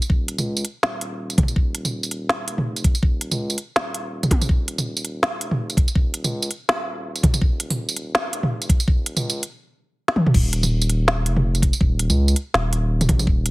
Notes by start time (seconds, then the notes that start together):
0.02 tambourine
0.10 D#1, kick
0.28 closed hi-hat
0.38 C#2, mid tom, tambourine
0.57 tambourine
0.65 closed hi-hat
0.83 D#1, snare
1.01 closed hi-hat
1.30 closed hi-hat, tambourine
1.38 F1, kick, closed hi-hat, mid tom
1.43 mid tom
1.48 F#1, tambourine
1.56 D#1, kick
1.75 closed hi-hat
1.85 mid tom, tambourine
2.03 tambourine
2.11 closed hi-hat
2.29 snare
2.48 F1, closed hi-hat
2.58 mid tom
2.76 closed hi-hat, tambourine
2.84 kick, closed hi-hat
2.95 tambourine
3.03 D#1, kick
3.21 closed hi-hat
3.31 C#2, mid tom, tambourine
3.50 tambourine
3.58 closed hi-hat
3.76 D#1, snare
3.94 closed hi-hat
4.23 closed hi-hat, mid tom, tambourine
4.31 A#1, kick, closed hi-hat, mid tom
4.41 mid tom, tambourine
4.49 D#1, kick
4.68 closed hi-hat
4.78 mid tom, tambourine
4.97 tambourine
5.05 closed hi-hat
5.23 snare
5.41 F1, closed hi-hat
5.51 mid tom
5.70 closed hi-hat, tambourine
5.77 kick, closed hi-hat
5.88 tambourine
5.95 D#1, kick
6.14 closed hi-hat
6.24 C#2, mid tom, tambourine
6.42 tambourine
6.51 closed hi-hat
6.68 D#1, snare
7.16 closed hi-hat, tambourine
7.23 F1, kick, closed hi-hat, mid tom
7.34 F#1, mid tom, tambourine
7.41 D#1, kick
7.60 closed hi-hat
7.70 mid tom, tambourine
7.89 tambourine
7.96 closed hi-hat
8.15 snare
8.33 F1, closed hi-hat
8.43 mid tom
8.62 closed hi-hat, tambourine
8.69 kick, closed hi-hat
8.80 tambourine
8.88 D#1, kick
9.06 closed hi-hat
9.17 C#2, mid tom, tambourine
9.30 tambourine
9.43 closed hi-hat
10.08 snare
10.16 mid tom
10.26 mid tom
10.34 D#1, kick, crash
10.53 closed hi-hat
10.63 mid tom, tambourine
10.81 tambourine
10.89 closed hi-hat
11.08 snare
11.26 F1, closed hi-hat
11.36 mid tom
11.55 closed hi-hat, tambourine
11.62 kick, closed hi-hat
11.73 tambourine
11.81 D#1, kick
11.99 closed hi-hat
12.09 C#2, mid tom, tambourine
12.28 tambourine
12.36 closed hi-hat
12.54 D#1, snare
12.73 closed hi-hat
13.01 closed hi-hat, mid tom, tambourine
13.09 A#1, kick, closed hi-hat, mid tom
13.19 mid tom, tambourine
13.27 D#1, kick
13.46 closed hi-hat